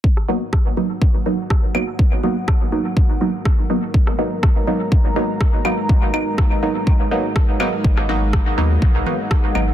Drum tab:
CL |--------------x-|----------------|--------------x-|--x-----------x-|
SD |-r--r-------r---|----r-------r---|-r--r-------r---|----r-------r---|
CG |----------------|----------------|----------------|----------------|
BD |o---o---o---o---|o---o---o---o---|o---o---o---o---|o---o---o---o---|

CL |--------------x-|
SD |-r--r-------r---|
CG |----------O-----|
BD |o---o---o---o---|